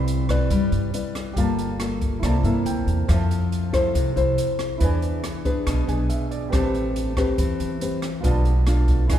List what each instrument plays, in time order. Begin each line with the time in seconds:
Already playing: upright bass C2, nylon-string guitar C4 E4 B4 D5, grand piano E4 D5 B5
0.08 closed hi-hat
0.29 nylon-string guitar E4 B4 D5, kick, cross-stick, closed hi-hat
0.50 upright bass G2, nylon-string guitar G3, kick, closed hi-hat
0.72 upright bass G2, closed hi-hat
0.94 nylon-string guitar E4 B4 D5, closed hi-hat
1.15 cross-stick, closed hi-hat
1.33 upright bass G1, nylon-string guitar G3 A#3, grand piano G4, kick, closed hi-hat
1.37 nylon-string guitar F4 A4, grand piano F5 A5
1.59 closed hi-hat
1.80 nylon-string guitar A#3 F4 A4, cross-stick, closed hi-hat
2.01 kick, closed hi-hat
2.20 upright bass C2, nylon-string guitar C3, grand piano E4, kick, cross-stick, closed hi-hat
2.24 nylon-string guitar A#3 E4 A4, grand piano D5 A5
2.43 upright bass G2, nylon-string guitar A#3 E4 A4, grand piano E5, closed hi-hat
2.65 upright bass D2, grand piano G5, closed hi-hat
2.87 upright bass E2, closed hi-hat
3.08 upright bass F2, nylon-string guitar F3 E4 A4 C5, grand piano C5 E5, kick, cross-stick, closed hi-hat
3.12 grand piano A5
3.31 closed hi-hat
3.52 closed hi-hat
3.73 nylon-string guitar E4 A4 C5, kick, cross-stick, closed hi-hat
3.95 upright bass C2, nylon-string guitar C3, kick, closed hi-hat
4.16 upright bass C2, nylon-string guitar E4 A4 C5, closed hi-hat
4.38 closed hi-hat
4.59 cross-stick, closed hi-hat
4.78 upright bass E2, nylon-string guitar E3 D4 G#4 B4, grand piano E4 B4, kick, closed hi-hat
4.82 grand piano D5 G#5
5.02 closed hi-hat
5.24 cross-stick, closed hi-hat
5.45 nylon-string guitar D4 G#4 B4, kick, closed hi-hat
5.66 upright bass B1, nylon-string guitar B2, kick, cross-stick, closed hi-hat
5.88 upright bass B1, nylon-string guitar D4 G#4 B4, grand piano G#5, closed hi-hat
6.09 grand piano E5, closed hi-hat
6.31 grand piano D5, closed hi-hat
6.49 upright bass A1, nylon-string guitar A3, grand piano G4 B4, kick
6.53 nylon-string guitar C4 G4 B4, grand piano A5, cross-stick, closed hi-hat
6.74 closed hi-hat
6.96 closed hi-hat
7.17 nylon-string guitar C4 G4 B4, kick, cross-stick, closed hi-hat
7.38 upright bass E2, nylon-string guitar E3, kick, closed hi-hat
7.60 upright bass E2, closed hi-hat
7.81 nylon-string guitar C4 G4 B4, closed hi-hat
8.02 cross-stick, closed hi-hat
8.21 upright bass B1, nylon-string guitar B2, grand piano F4 B4 D5, kick, closed hi-hat
8.25 nylon-string guitar A3 D4 F4, grand piano A5
8.45 closed hi-hat
8.67 nylon-string guitar A3 D4 F4, cross-stick, closed hi-hat
8.88 kick, closed hi-hat
9.07 upright bass E2, nylon-string guitar E3 D4 G#4 B4, grand piano E4 B4 D5, kick, cross-stick, closed hi-hat
9.13 grand piano G#5